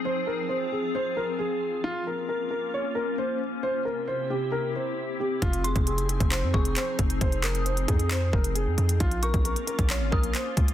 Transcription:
<<
  \new Staff \with { instrumentName = "Synth bell" } { \time 4/4 \key f \minor \tempo 4 = 134 r1 | r1 | r1 | r8 c'''2 des'''8 r4 |
r8 ees'''2.~ ees'''8 | r8 des'''2 ees'''8 r4 | }
  \new Staff \with { instrumentName = "Grand piano" } { \time 4/4 \key f \minor c''8 bes'8 c''8 aes'8 c''8 bes'8 aes'4 | f'8 bes'8 bes'8 bes'8 des''8 bes'8 c''8 r8 | c''8 bes'8 c''8 g'8 bes'8 c''4 g'8 | f'8 aes'8 aes'8 aes'8 c''8 aes'8 c''8 r8 |
c''8 bes'8 c''8 aes'8 c''8 bes'8 aes'4 | f'8 bes'8 bes'8 bes'8 des''8 bes'8 c''8 r8 | }
  \new Staff \with { instrumentName = "Ambient pad" } { \time 4/4 \key f \minor << { <f f' aes'>1 | <des' f'>1 | <c e' g'>1 | <f ees' aes'>1~ |
<f ees' aes'>1 | <des' f'>1 | } \\ { c'1 | bes1 | c'1~ | c'1~ |
c'1 | bes1 | } >> }
  \new Staff \with { instrumentName = "808-style bass" } { \clef bass \time 4/4 \key f \minor r1 | r1 | r1 | f,,8. f,,4 f,,8 f,16 f,,8 r8 f,,8 |
f,,4. f,4 f,,8. f,16 f,8 | bes,,8. bes,,8 r8 bes,,8 aes,,16 bes,,8 r8 des,8 | }
  \new DrumStaff \with { instrumentName = "Drums" } \drummode { \time 4/4 r4 r4 r4 r4 | r4 r4 r4 r4 | r4 r4 r4 r4 | <hh bd>16 hh16 hh16 <hh bd>16 hh16 hh16 hh16 <hh bd>16 <hc hh>8 bd16 hh16 <hc hh>8 <hh bd>16 hh16 |
<hh bd>16 hh16 <hc hh>16 hh16 hh16 hh16 <hh bd>16 hh16 <hc hh>8 bd16 hh16 hh8 hh16 hh16 | <hh bd>16 hh16 hh16 <hh bd>16 hh16 hh16 hh16 <hh bd>16 <hc hh>8 bd16 hh16 <hc hh>8 <hh bd>16 hh16 | }
>>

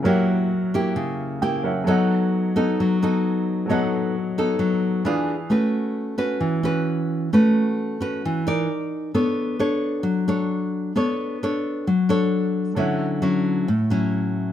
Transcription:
<<
  \new Staff \with { instrumentName = "Grand piano" } { \time 4/4 \key b \minor \tempo 4 = 132 << { r2. g''8 fis''8 | r1 | r1 | \key a \major r1 |
r1 | r1 | r1 | r1 | } \\ { <fis ais' cis'' e'' fis''>2.~ <fis ais' cis'' e'' fis''>8 <fis ais' cis'' e''>8 | <fis a' cis'' dis'' fis''>1 | <fis a' cis'' dis'' fis''>2. <e gis' b' d'' f''>4 | r1 |
r1 | r1 | r1 | <a' cis'' e'' fis''>1 | } >> }
  \new Staff \with { instrumentName = "Nylon-string guitar" } { \time 4/4 \key b \minor << { <ais e' g'>4 r8 <ais e' g'>4. <ais e' g'>8 r8 | <b dis' a'>4. <b dis' a'>4 <b dis' a'>4. | <b dis' a'>4 r8 <b dis' a'>4. <d' f' gis'>8 r8 | \key a \major <cis' fis' b'>4. <cis' fis' b'>4 <cis' fis' b'>4. |
<cis' fis' b'>4. <cis' fis' b'>4 <dis' bes' d''>4. | <d' a' cis''>4 <d' a' cis''>4. <d' a' cis''>4. | <d' a' cis''>4 <d' a' cis''>4 r8 <d' a' cis''>4. | <fis cis' e'>4 <fis cis' e'>4 r8 <fis cis' e'>4. | } \\ { fis2 cis2 | fis2 fis2 | fis2 fis4 r4 | a2 e2 |
a2 e4 r4 | b2 fis2 | b2 fis2 | d2 a,2 | } >> }
>>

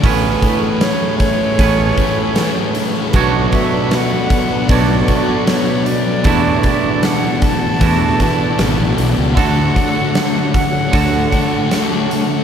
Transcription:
<<
  \new Staff \with { instrumentName = "Flute" } { \time 4/4 \key a \major \tempo 4 = 77 r4 cis''8 cis''2 r8 | r8 e''8 fis''4 d''4 cis''8 d''8~ | d''4 fis''8 a''2 r8 | fis''4. fis''2 r8 | }
  \new Staff \with { instrumentName = "String machine" } { \time 4/4 \key a \major << { <cis' b'>1 | <d' b'>1 | <e' d''>1 | <d' cis''>1 | } \\ { <a gis'>1 | <b a'>1 | <a fis'>1~ | <a fis'>1 | } >> }
  \new Staff \with { instrumentName = "Clean electric guitar" } { \time 4/4 \key a \major <a, b cis' b'>2 <a, b cis' b'>2 | <b, fis a d' fis' cis''>2 <b, fis a d' fis' cis''>2 | <e, e a d' e' fis'>2 <e, e a d' e' fis'>2 | <d fis' a'>2 <d fis' a'>2 | }
  \new Staff \with { instrumentName = "Distorted electric guitar" } { \clef bass \time 4/4 \key a \major <a, e a>2~ <a, e a>8 <a, e a>8 <a, e a>4 | <b, fis b>2~ <b, fis b>8 <b, fis b>8 <b, fis b>4 | <e, b, e>2~ <e, b, e>8 <e, b, e>8 <e, b, e>4 | <d a d'>2~ <d a d'>8 <d a d'>8 <d a d'>4 | }
  \new Staff \with { instrumentName = "Fingered electric bass" } { \clef bass \time 4/4 \key a \major a,,8 r4. a,,8 r4. | b,,8 r4. b,,8 r4. | e,8 r4. e,8 r8 gis,,16 a,,16 b,,16 cis,16 | d,8 r4. d,8 r4. | }
  \new DrumStaff \with { instrumentName = "Drums" } \drummode { \time 4/4 <hho bd>8 <hho bd>8 <hho sn>8 <hho bd>8 <hho bd>8 <hho bd>8 <hho sn>8 hho8 | <hho bd>8 <hho bd>8 <hho sn>8 <hho bd>8 <hho bd>8 <hho bd>8 <hho sn>8 hho8 | <hho bd>8 <hho bd>8 <hho sn>8 <hho bd>8 <hho bd>8 <hho bd>8 <hho sn>8 hho8 | <hho bd>8 <hho bd>8 <hho sn>8 <hho bd>8 <hho bd>8 <hho bd>8 <hho sn>8 hho8 | }
>>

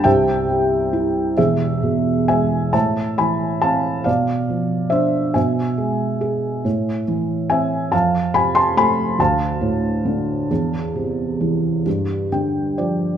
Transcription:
<<
  \new Staff \with { instrumentName = "Felt piano" } { \time 6/8 \key e \phrygian \tempo 4. = 46 <e'' g''>4. <gis' e''>4 <e'' gis''>8 | \key a \minor <e'' a''>8 <gis'' b''>8 <f'' a''>8 <d'' f''>4 <c'' e''>8 | <e'' gis''>2 r8 <e'' gis''>8 | <f'' a''>8 <gis'' b''>16 <a'' c'''>16 <gis'' b''>8 <f'' a''>4.~ |
<f'' a''>2 g''8 d''8 | }
  \new Staff \with { instrumentName = "Felt piano" } { \clef bass \time 6/8 \key e \phrygian <c, c>8 g8 e'8 <e,, e,>8 b,8 gis8 | \key a \minor a,8 e8 c'8 b,8 f8 d'8 | b,8 gis8 gis'8 a,8 e8 c'8 | f,8 c8 a8 d,8 a,8 d8 |
e,8 c8 e8 g,8 d8 f8 | }
>>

